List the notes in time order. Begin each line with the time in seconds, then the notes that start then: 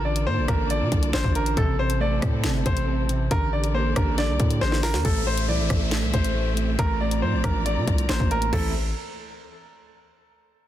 Already playing: A1 F4 A4 A#4 D5
0.05 D3 D5
0.16 closed hi-hat
0.27 A2 A#3 C5
0.37 A1
0.48 A1 D4 A#4, kick, cross-stick, closed hi-hat
0.70 D3 D5, closed hi-hat
0.81 C3
0.91 C2 D3, kick, closed hi-hat
1.03 closed hi-hat
1.13 A1 D4 C5, finger snap, snare
1.24 A1, kick
1.35 D3 A#4, closed hi-hat
1.46 closed hi-hat
1.57 A1 C3 C4 E4 A4, kick, closed hi-hat
1.79 C3 C5
1.90 closed hi-hat
2.00 A3 D5
2.22 A2 C4, kick, cross-stick, closed hi-hat
2.44 G1 C3, finger snap, snare, closed hi-hat
2.66 A1 C3 C5, kick, closed hi-hat
2.77 closed hi-hat
2.87 C4
3.09 C3, closed hi-hat
3.31 A1 D3 G4 A4 A#4 D5, kick, closed hi-hat
3.53 D3 D5
3.64 closed hi-hat
3.74 A#3 C5
3.96 A1 D4 A#4, kick, cross-stick, closed hi-hat
4.18 D3 D5, snare, closed hi-hat
4.29 C2
4.40 A2 D3, kick, closed hi-hat
4.51 closed hi-hat
4.61 A1 D4 C5, snare
4.72 snare
4.83 D3 A#4, snare, open hi-hat
4.94 E2, snare, closed hi-hat
5.05 A1 A2 C4 A4 C5 E5, kick, closed hi-hat, downlifter
5.26 A2 C5
5.38 closed hi-hat
5.48 C2 E3 D5
5.59 A1
5.70 A1 A3, kick, cross-stick, closed hi-hat
5.91 A2, finger snap, snare, closed hi-hat
6.03 C2
6.13 A1 A2 C5, kick, closed hi-hat
6.24 closed hi-hat
6.35 A3
6.57 A2, closed hi-hat
6.79 A1 A3 F4 A#4 D5 A#5, kick, closed hi-hat
7.01 A2 D5
7.11 closed hi-hat
7.22 A2 F3 C5
7.33 A1
7.44 A1 D4 A#4, kick, cross-stick, closed hi-hat
7.65 A3 D5, closed hi-hat
7.77 C3
7.88 C2, kick, closed hi-hat
7.98 closed hi-hat
8.09 A1 A#3 C5, finger snap, snare
8.20 A1, kick
8.30 A2 A#4, closed hi-hat
8.42 closed hi-hat
8.52 A1 E3 A3 C4 E4 A4 C5 E5, kick, floor tom, crash